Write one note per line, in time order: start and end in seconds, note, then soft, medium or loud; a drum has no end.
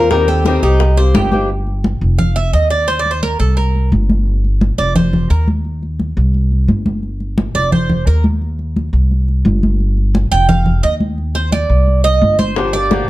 0.00 0.57 D#2 loud
0.00 0.11 A#3 medium
0.00 0.11 C4 medium
0.00 0.10 F4 medium
0.00 0.27 A#4 medium
0.11 0.44 D#3 medium
0.11 0.45 G3 medium
0.11 0.45 C4 medium
0.11 0.45 G4 medium
0.11 0.29 A#4 loud
0.11 high bongo medium
0.11 high conga soft
0.28 0.45 G4 medium
0.28 0.64 A4 medium
0.28 high bongo soft
0.28 high conga soft
0.45 0.62 D#3 medium
0.45 0.62 G3 medium
0.45 0.63 C4 medium
0.45 0.62 G4 medium
0.45 0.62 A#4 medium
0.45 high bongo medium
0.45 high conga medium
0.63 1.11 C2 medium
0.63 0.80 G3 soft
0.63 0.80 C4 soft
0.63 0.96 D#4 medium
0.63 0.79 G4 soft
0.63 1.28 G4 medium
0.63 high conga soft
0.80 muted steel-string acoustic guitar stroke medium
0.80 high bongo medium
0.80 high conga soft
0.97 1.14 A#3 soft
0.97 1.14 C4 soft
0.97 1.14 G4 soft
0.97 1.14 C5 medium
0.97 high bongo soft
0.97 high conga soft
1.14 1.95 G1 medium
1.14 1.31 D#3 soft
1.14 1.32 A#3 soft
1.14 1.31 C4 medium
1.14 1.48 G4 medium
1.14 1.30 G4 medium
1.14 high bongo medium
1.14 low bongo medium
1.14 high conga medium
1.31 1.49 D#3 medium
1.31 1.49 A#3 medium
1.31 1.49 C4 medium
1.31 1.48 G4 medium
1.31 high bongo soft
1.31 high conga medium
1.49 high conga soft
1.67 high conga soft
1.84 high conga medium
2.01 2.50 F1 medium
2.01 high conga soft
2.19 2.35 F5 medium
2.19 high conga soft
2.19 low conga medium
2.36 2.53 E5 medium
2.36 high conga soft
2.53 3.34 D#2 medium
2.53 2.70 D#5 medium
2.53 high conga soft
2.70 2.87 D5 medium
2.88 2.99 C5 medium
2.88 high conga soft
2.99 3.11 D5 medium
3.06 high conga soft
3.11 3.22 C5 medium
3.23 3.39 A#4 medium
3.23 high conga medium
3.40 3.88 C2 medium
3.40 3.56 A4 medium
3.40 high conga soft
3.57 3.89 A#4 medium
3.57 high conga soft
3.75 high conga soft
3.92 4.73 G1 medium
3.92 high conga medium
4.10 high conga medium
4.27 high conga soft
4.44 high conga soft
4.61 high conga medium
4.78 5.27 F1 medium
4.78 4.95 D5 medium
4.78 high conga soft
4.96 5.28 C5 medium
4.96 high conga soft
4.96 low conga medium
5.13 high conga soft
5.13 low conga medium
5.30 6.11 D#2 medium
5.30 5.47 A#4 medium
5.30 high conga soft
5.48 high conga medium
5.65 high conga soft
5.83 high conga soft
6.00 high conga medium
6.17 6.65 C2 medium
6.17 high conga soft
6.34 high conga soft
6.51 high conga soft
6.68 7.49 G1 medium
6.68 high conga medium
6.86 high conga medium
7.03 high conga soft
7.20 high conga soft
7.38 high conga medium
7.55 8.03 F1 medium
7.55 7.72 D5 loud
7.55 high conga soft
7.72 8.04 C5 medium
7.72 high conga soft
7.72 low conga medium
7.89 high conga soft
7.89 low conga medium
8.07 8.87 D#2 medium
8.07 8.24 A#4 medium
8.07 high conga soft
8.24 high conga medium
8.42 high conga soft
8.59 high conga soft
8.76 high conga medium
8.93 9.41 C2 medium
8.93 high conga soft
9.11 high conga soft
9.29 high conga soft
9.45 10.26 G1 loud
9.45 high conga medium
9.63 high conga medium
9.80 high conga soft
9.97 high conga soft
10.15 high conga medium
10.31 10.80 F1 medium
10.31 10.48 G5 loud
10.31 high conga soft
10.49 10.81 F5 medium
10.49 high conga soft
10.49 low conga medium
10.66 high conga soft
10.66 low conga medium
10.83 11.64 D#2 medium
10.83 10.94 D#5 medium
10.83 high conga soft
11.00 high conga medium
11.18 high conga soft
11.35 11.52 C5 medium
11.35 high conga soft
11.52 12.01 D5 medium
11.52 high conga medium
11.70 12.18 C2 medium
11.70 high conga soft
11.87 high conga soft
12.04 12.36 D#5 loud
12.04 high conga soft
12.22 13.02 G1 loud
12.22 high conga medium
12.39 12.71 C5 medium
12.39 high conga medium
12.56 12.73 D3 medium
12.56 12.73 F3 medium
12.56 12.73 A#3 medium
12.56 12.73 D4 medium
12.56 12.72 G4 medium
12.56 high bongo medium
12.56 high conga soft
12.73 12.90 A#3 soft
12.73 12.91 D4 soft
12.73 12.90 G4 soft
12.73 13.06 D5 medium
12.73 high bongo soft
12.73 high conga soft
12.91 13.07 D3 medium
12.91 13.08 F3 medium
12.91 13.08 A#3 medium
12.91 13.08 D4 medium
12.91 13.07 G4 medium
12.91 high bongo medium
12.91 high conga medium